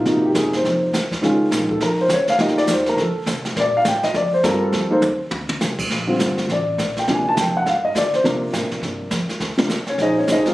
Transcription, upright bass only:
X:1
M:4/4
L:1/8
Q:"Swing" 1/4=205
K:Bb
V:1 name="Upright bass" clef=bass
_A,,2 _G,,2 F,,2 E,,2 | _D,,2 B,,,2 F,,2 D,,2 | C,, z E,,2 F,, z C,2 | B,,2 A,, z F,,2 G,,2 |
F,,2 E,,2 D,,2 C,,2 | B,,,2 G,,,2 A,,,2 B,,,2 | D,,2 ^E,,2 G,,2 D,2 | C,2 A,, z G,,2 F,, z |
E,,2 C,,2 B,,,2 C,,2 |]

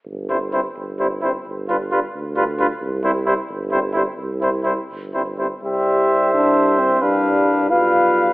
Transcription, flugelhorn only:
X:1
M:6/8
L:1/8
Q:3/8=87
K:C
V:1 name="Flugelhorn"
z E E z E E | z F F z F F | z E E z E E | z E E z E E |
c6 | B3 B3 |]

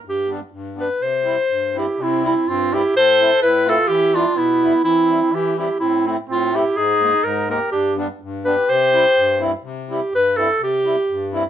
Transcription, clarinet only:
X:1
M:2/4
L:1/8
Q:1/4=125
K:C
V:1 name="Clarinet"
G z2 B | c3 G | E E F G | c2 B A |
G F E2 | E2 G G | E E F G | _A2 _B B |
G z2 B | c3 z | z G B A | G3 z |]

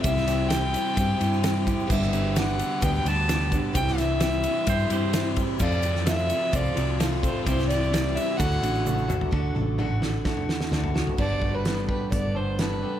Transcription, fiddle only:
X:1
M:4/4
L:1/16
Q:1/4=129
K:G
V:1 name="Fiddle"
e4 g8- g2 z2 | e4 f4 g g a4 z2 | g2 e12 z2 | d4 e4 d4 z2 c2 |
c2 d4 e2 f6 z2 | z16 | d3 B3 B2 d2 c2 B4 |]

